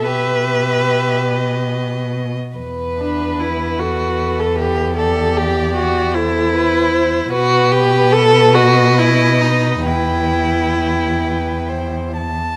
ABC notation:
X:1
M:6/8
L:1/16
Q:3/8=48
K:Em
V:1 name="Violin"
e6 ^d4- d z | B6 B6 | d6 c6 | B12 |
B6 B2 c2 a2 |]
V:2 name="Violin"
G8- G z3 | B6 A6 | G6 A2 B2 c2 | B6 ^d6 |
g8- g z3 |]
V:3 name="Viola"
B8- B2 z2 | z2 D2 E2 F3 A G2 | A2 G2 F2 E6 | F2 G2 A2 F2 E2 ^D2 |
E8- E2 z2 |]
V:4 name="Cello" clef=bass
B,,8- B,,3 z | E,,12- | E,,12 | B,,12 |
E,,8- E,,3 z |]